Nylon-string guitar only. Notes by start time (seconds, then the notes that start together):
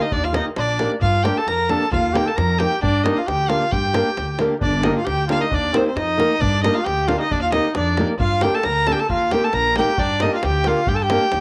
0.33 A#3 D#4 G4 A#4
0.79 A#3 D#4 G4 A#4
1.24 A#3 D4 G4 A#4
1.69 A#3 D4 G4 A#4
2.14 A#3 D#4 G4 A#4
2.59 A#3 D#4 G4 A#4
3.04 A#3 D4 G4 A#4
3.49 A#3 D4 G4 A#4
3.94 A#3 D4 G4 A#4
4.40 A#3 D4 G4 A#4
4.84 A#3 D4 G4 A#4
5.29 A#3 D4 G4 A#4
5.73 A#3 D#4 G4 A#4
6.18 A#3 D#4 G4 A#4
6.64 A#3 D4 G4 A#4
7.08 A#3 D4 G4 A#4
7.52 A#3 D#4 G4 A#4
7.99 A#3 D#4 G4 A#4
8.43 A#3 D4 G4 A#4
8.87 A#3 D4 G4 A#4
9.33 A#3 D#4 G4 A#4
9.78 A#3 D#4 G4 A#4
10.22 A#3 D4 G4 A#4
10.66 A#3 D4 G4 A#4
11.10 A#3 D4 G4 A#4